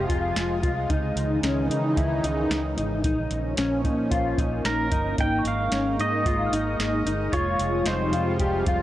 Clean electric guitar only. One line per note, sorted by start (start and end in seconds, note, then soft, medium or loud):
0.09 0.61 F4 medium
0.63 0.90 F4 medium
0.90 1.43 D#4 medium
1.43 1.70 C#4 medium
1.70 1.97 D#4 medium
1.97 2.24 E4 medium
2.23 2.76 D#4 medium
2.78 3.03 D#4 medium
3.05 3.58 D#4 medium
3.58 3.84 C#4 medium
3.85 4.11 D#4 medium
4.11 4.38 F4 medium
4.38 4.90 D#4 medium
4.92 5.17 D#4 medium
5.19 5.72 D#4 medium
5.72 5.99 C#4 medium
5.99 6.26 D#4 medium
6.26 6.53 F4 medium
6.53 7.05 D#4 medium
7.06 7.33 D#4 medium
7.33 7.86 F4 medium
7.86 8.13 D#4 medium
8.13 8.39 F4 medium
8.40 8.67 G4 medium
8.68 8.82 F4 medium